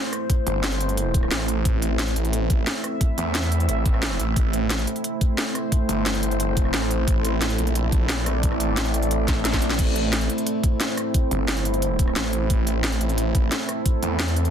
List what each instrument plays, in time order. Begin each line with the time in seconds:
Already playing: ambient pad A3 C4 E4 C5
0.13 cross-stick, closed hi-hat
0.30 kick, closed hi-hat
0.47 detuned saw bass G1, closed hi-hat
0.64 snare, closed hi-hat
0.72 closed hi-hat
0.81 closed hi-hat
0.89 closed hi-hat
0.97 closed hi-hat
1.14 kick, closed hi-hat
1.23 cross-stick
1.31 detuned saw bass A1, snare, closed hi-hat
1.40 cross-stick
1.48 closed hi-hat
1.65 detuned saw bass A1, ambient pad E5, kick, closed hi-hat
1.82 closed hi-hat
1.99 snare, closed hi-hat
2.08 closed hi-hat
2.16 detuned saw bass A1, closed hi-hat
2.25 closed hi-hat
2.33 closed hi-hat
2.50 kick, closed hi-hat
2.67 snare, closed hi-hat
2.84 cross-stick, closed hi-hat
3.01 kick, closed hi-hat
3.18 detuned saw bass E2, closed hi-hat
3.35 snare, closed hi-hat
3.43 closed hi-hat
3.52 closed hi-hat
3.60 closed hi-hat
3.69 detuned saw bass A1, closed hi-hat
3.86 detuned saw bass A1, kick, closed hi-hat
3.94 cross-stick
4.03 snare, closed hi-hat
4.11 cross-stick
4.20 detuned saw bass A1, closed hi-hat
4.36 detuned saw bass A1, ambient pad C5, kick, closed hi-hat
4.53 closed hi-hat
4.70 snare, closed hi-hat
4.79 closed hi-hat
4.87 closed hi-hat
4.96 closed hi-hat
5.04 closed hi-hat
5.21 kick, closed hi-hat
5.38 snare, closed hi-hat
5.55 cross-stick, closed hi-hat
5.72 kick, closed hi-hat
5.89 detuned saw bass G1, closed hi-hat
6.06 snare, closed hi-hat
6.14 closed hi-hat
6.23 closed hi-hat
6.31 closed hi-hat
6.40 closed hi-hat
6.48 detuned saw bass F#1
6.57 kick, closed hi-hat
6.65 cross-stick
6.74 detuned saw bass A1, snare, closed hi-hat
6.82 cross-stick
6.91 closed hi-hat
7.08 detuned saw bass A1, ambient pad D5, kick, closed hi-hat
7.25 closed hi-hat
7.42 snare, closed hi-hat
7.50 closed hi-hat
7.58 detuned saw bass A#1, closed hi-hat
7.67 closed hi-hat
7.75 closed hi-hat
7.92 kick, closed hi-hat
8.09 snare, closed hi-hat
8.26 cross-stick, closed hi-hat
8.43 detuned saw bass A1, kick, closed hi-hat
8.52 cross-stick
8.60 closed hi-hat
8.77 detuned saw bass A1, snare, closed hi-hat
8.86 closed hi-hat
8.94 closed hi-hat
9.03 closed hi-hat
9.11 closed hi-hat
9.28 kick, snare, closed hi-hat
9.45 snare, closed hi-hat
9.53 kick, snare, closed hi-hat
9.62 detuned saw bass A#1, closed hi-hat
9.70 snare
9.79 detuned saw bass A1, ambient pad C5, kick, closed hi-hat, crash
9.96 closed hi-hat
10.13 snare, closed hi-hat
10.21 closed hi-hat
10.30 closed hi-hat
10.38 closed hi-hat
10.47 closed hi-hat
10.63 kick, closed hi-hat
10.80 snare, closed hi-hat
10.97 cross-stick, closed hi-hat
11.14 kick, closed hi-hat
11.31 detuned saw bass G1, closed hi-hat
11.48 snare, closed hi-hat
11.57 closed hi-hat
11.65 closed hi-hat
11.74 closed hi-hat
11.82 closed hi-hat
11.99 kick, closed hi-hat
12.08 cross-stick
12.16 detuned saw bass A1, snare, closed hi-hat
12.25 cross-stick
12.33 closed hi-hat
12.50 detuned saw bass A1, ambient pad A4, kick, closed hi-hat
12.67 closed hi-hat
12.84 snare, closed hi-hat
12.92 closed hi-hat
13.01 detuned saw bass A1, closed hi-hat
13.09 closed hi-hat
13.18 closed hi-hat
13.35 kick, closed hi-hat
13.52 snare, closed hi-hat
13.69 cross-stick, closed hi-hat
13.86 kick, closed hi-hat
14.03 detuned saw bass E2, closed hi-hat
14.20 snare, closed hi-hat
14.28 closed hi-hat
14.36 closed hi-hat
14.45 closed hi-hat